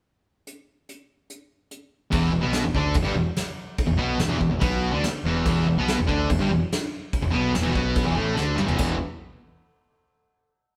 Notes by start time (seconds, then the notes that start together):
0.47 closed hi-hat
0.89 closed hi-hat
1.30 closed hi-hat
1.71 closed hi-hat
2.11 E1 E2 E3, kick, crash
2.32 E1 E2
2.41 B1 B2 B3
2.53 snare, crash
2.65 E1 E2
2.75 D2 D3 D4, kick
2.94 E1 E2, kick, crash
3.03 G1 G2 G3
3.14 E1 E2
3.36 snare, crash
3.78 kick, crash
3.86 E1 E2
3.96 B1 B2 B3
4.18 E1 E2, snare, crash
4.28 E1 E2 E3
4.39 E1 E2, kick
4.50 E1 E2
4.60 B1 B2 B3, kick, crash
4.92 D2 D3 D4
5.03 muted picked electric bass stroke, muted distorted electric guitar stroke, snare, crash
5.24 E1 E2 E3
5.46 E1 E2 E3, kick, crash
5.67 E1 E2
5.77 B1 B2 B3
5.88 snare, crash
5.98 E1 E2
6.07 D2 D3 D4, kick
6.30 E1 E2, kick, crash
6.39 G1 G2 G3
6.50 E1 E2
6.72 snare, crash
7.13 kick, crash
7.22 E1 E2
7.31 B1 B2 B3
7.52 E1 E2, snare, crash
7.61 E1 E2 E3
7.70 B2 B3
7.75 B1, kick
7.96 kick, crash
8.03 E1 E2 E3
8.14 A1 A2 A3
8.36 D2 D3 D4, snare
8.55 G1 G2 G3, mid tom
8.65 E2 E3, floor tom
8.69 E1
8.77 E1 E2 B2 E3, kick, crash